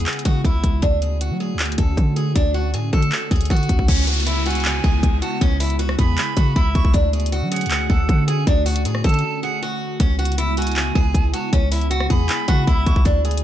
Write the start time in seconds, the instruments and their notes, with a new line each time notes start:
Already playing: analog synth pad C#3 G#3 B3 E4, steel-string acoustic guitar G#4
0.06 clap, closed hi-hat
0.13 closed hi-hat
0.19 closed hi-hat
0.25 808-style bass C#3, steel-string acoustic guitar F#4, kick, closed hi-hat
0.45 808-style bass C#2, steel-string acoustic guitar E4, kick, closed hi-hat
0.64 808-style bass C#2, kick, closed hi-hat
0.82 808-style bass D2, analog synth pad D3 A3 C#4 F#4, steel-string acoustic guitar D4, kick, closed hi-hat
1.02 steel-string acoustic guitar G#4, closed hi-hat
1.21 steel-string acoustic guitar F#4, closed hi-hat
1.30 808-style bass F#3
1.40 steel-string acoustic guitar G#4
1.54 808-style bass D2
1.59 clap, closed hi-hat
1.66 closed hi-hat
1.72 closed hi-hat
1.78 808-style bass D2, steel-string acoustic guitar A4, kick, closed hi-hat
1.97 808-style bass D3, kick, closed hi-hat
2.16 steel-string acoustic guitar G#4, closed hi-hat
2.35 808-style bass D2, steel-string acoustic guitar D4, kick, closed hi-hat
2.54 steel-string acoustic guitar F#4
2.74 808-style bass A2, steel-string acoustic guitar G#4, closed hi-hat
2.93 808-style bass D3, steel-string acoustic guitar A4, kick, closed hi-hat
3.02 closed hi-hat
3.12 clap, closed hi-hat
3.31 808-style bass D2, steel-string acoustic guitar G#4, kick, closed hi-hat
3.36 closed hi-hat
3.41 closed hi-hat
3.45 closed hi-hat
3.50 808-style bass D3, steel-string acoustic guitar F#4, kick, closed hi-hat
3.57 closed hi-hat
3.63 closed hi-hat
3.69 808-style bass D2, kick, closed hi-hat
3.79 kick
3.88 808-style bass C#2, analog synth pad C#3 G#3 B3 E4, steel-string acoustic guitar C#4, kick, closed hi-hat, crash, downlifter
4.07 steel-string acoustic guitar F#4, closed hi-hat
4.14 closed hi-hat
4.20 closed hi-hat
4.26 steel-string acoustic guitar E4, closed hi-hat
4.46 steel-string acoustic guitar F#4, flute G#5, closed hi-hat
4.50 closed hi-hat
4.55 closed hi-hat
4.60 closed hi-hat
4.65 clap, closed hi-hat
4.84 808-style bass C#2, steel-string acoustic guitar G#4, kick
5.03 808-style bass C#2, kick, closed hi-hat
5.22 steel-string acoustic guitar F#4, flute A5, closed hi-hat
5.41 808-style bass C#2, steel-string acoustic guitar C#4, kick, closed hi-hat
5.60 steel-string acoustic guitar E4, closed hi-hat, open hi-hat
5.70 closed hi-hat
5.79 steel-string acoustic guitar F#4, closed hi-hat
5.89 cross-stick
5.98 808-style bass E2, steel-string acoustic guitar G#4, flute B5, kick, closed hi-hat
6.18 clap, closed hi-hat
6.37 808-style bass C#3, steel-string acoustic guitar F#4, kick, closed hi-hat
6.56 808-style bass C#2, steel-string acoustic guitar E4, kick
6.75 808-style bass C#2, flute C#6, kick, closed hi-hat
6.85 kick
6.94 808-style bass D2, analog synth pad D3 A3 C#4 F#4, steel-string acoustic guitar D4, kick, closed hi-hat
7.13 steel-string acoustic guitar G#4, closed hi-hat
7.20 closed hi-hat
7.26 closed hi-hat
7.32 steel-string acoustic guitar F#4, closed hi-hat
7.42 808-style bass F#3
7.51 steel-string acoustic guitar G#4, flute F#5, closed hi-hat
7.56 closed hi-hat
7.61 closed hi-hat
7.66 808-style bass D2, closed hi-hat
7.70 clap, closed hi-hat
7.90 808-style bass D2, steel-string acoustic guitar A4, kick
8.09 808-style bass D3, kick, closed hi-hat
8.28 steel-string acoustic guitar G#4, flute G#5, closed hi-hat
8.47 808-style bass D2, steel-string acoustic guitar D4, kick, closed hi-hat
8.66 steel-string acoustic guitar F#4, closed hi-hat, open hi-hat
8.76 closed hi-hat
8.85 808-style bass A2, steel-string acoustic guitar G#4, closed hi-hat
8.95 cross-stick
9.04 808-style bass D3, steel-string acoustic guitar A4, flute A5, kick, closed hi-hat
9.09 closed hi-hat
9.14 closed hi-hat
9.19 closed hi-hat
9.43 steel-string acoustic guitar G#4, flute F#5
9.62 steel-string acoustic guitar F#4
10.00 808-style bass C#2, analog synth pad C#3 G#3 B3 E4, steel-string acoustic guitar C#4, kick, closed hi-hat
10.19 steel-string acoustic guitar F#4, closed hi-hat
10.25 closed hi-hat
10.32 closed hi-hat
10.38 steel-string acoustic guitar E4, closed hi-hat
10.57 steel-string acoustic guitar F#4, flute G#5, closed hi-hat
10.62 closed hi-hat
10.67 closed hi-hat
10.72 closed hi-hat
10.76 clap, closed hi-hat
10.95 808-style bass C#2, steel-string acoustic guitar G#4, kick
11.14 808-style bass C#2, kick, closed hi-hat
11.33 steel-string acoustic guitar F#4, flute A5, closed hi-hat
11.53 808-style bass C#2, steel-string acoustic guitar C#4, kick, closed hi-hat
11.71 steel-string acoustic guitar E4, closed hi-hat, open hi-hat
11.81 closed hi-hat
11.91 steel-string acoustic guitar F#4, closed hi-hat
12.00 cross-stick
12.10 808-style bass E2, steel-string acoustic guitar G#4, flute B5, kick, closed hi-hat
12.29 clap, closed hi-hat
12.48 808-style bass C#3, steel-string acoustic guitar F#4, kick, closed hi-hat
12.67 808-style bass C#2, steel-string acoustic guitar E4, kick
12.86 808-style bass C#2, flute C#6, kick, closed hi-hat
12.96 kick
13.05 808-style bass D2, analog synth pad D3 A3 C#4 F#4, steel-string acoustic guitar D4, kick, closed hi-hat
13.25 steel-string acoustic guitar G#4, closed hi-hat
13.31 closed hi-hat
13.37 closed hi-hat